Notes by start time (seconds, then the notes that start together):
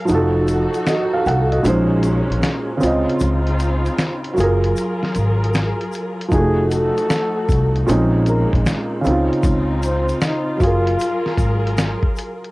Already playing: G#4 F5
0.05 F3 D#4 F#4 A4, shaker
0.09 F1 F#4, closed hi-hat
0.14 A4
0.48 closed hi-hat, shaker
0.74 closed hi-hat, shaker
0.86 F#4 D#5, finger snap, snare, closed hi-hat, shaker
1.13 A4 F5
1.26 C2 A4 F#5, closed hi-hat, shaker
1.52 F#4 D#5, closed hi-hat
1.63 A#1 A#2 G#3 A#3 C#4 D#4, closed hi-hat, shaker
1.68 C5
2.03 closed hi-hat, shaker
2.30 A#1, closed hi-hat
2.42 finger snap, snare, closed hi-hat, shaker
2.77 C#3 C4 D#4 F4, shaker
2.82 C#2 F4, closed hi-hat
2.87 D#5
3.09 closed hi-hat
3.20 C#2, closed hi-hat, shaker
3.47 closed hi-hat
3.60 closed hi-hat, shaker
3.86 closed hi-hat, shaker
3.98 finger snap, snare, closed hi-hat, shaker
4.24 closed hi-hat
4.33 F#3 F4 G#4 A#4, shaker
4.38 F#1 G#4, closed hi-hat
4.43 A#4
4.64 closed hi-hat
4.76 closed hi-hat, shaker
5.03 snare
5.15 G#1, closed hi-hat, shaker
5.44 closed hi-hat
5.54 finger snap, snare, closed hi-hat, shaker
5.81 closed hi-hat
5.93 closed hi-hat, shaker
6.21 closed hi-hat
6.28 F1 F3 A3 D#4 F#4, kick, shaker
6.33 F#4 G#4, closed hi-hat
6.38 A3
6.71 A4, closed hi-hat, shaker
6.97 closed hi-hat, shaker
7.10 finger snap, snare, closed hi-hat, shaker
7.49 C2, kick, closed hi-hat, shaker
7.76 closed hi-hat
7.86 A#1 A#2 C#3 G#3 A#3 C4 C#4, closed hi-hat, shaker
7.91 D#4
8.26 A#4, closed hi-hat, shaker
8.53 A#1, kick, closed hi-hat
8.66 finger snap, snare, closed hi-hat, shaker
9.01 C#3 C4 D#4 F4, shaker
9.06 C#2 D#4, closed hi-hat
9.10 F4
9.33 closed hi-hat
9.43 C#2, kick, closed hi-hat, shaker
9.83 C5, closed hi-hat, shaker
10.09 closed hi-hat, shaker
10.21 D#4, finger snap, snare, closed hi-hat, shaker
10.57 F#1 F#3 F4 G#4 A#4, kick, shaker
10.62 F4 G#4, closed hi-hat
10.66 A#4
10.87 closed hi-hat
11.00 closed hi-hat, shaker
11.26 snare
11.37 G#1, kick, closed hi-hat, shaker
11.67 closed hi-hat
11.78 finger snap, snare, closed hi-hat, shaker
12.03 kick
12.16 closed hi-hat, shaker
12.44 closed hi-hat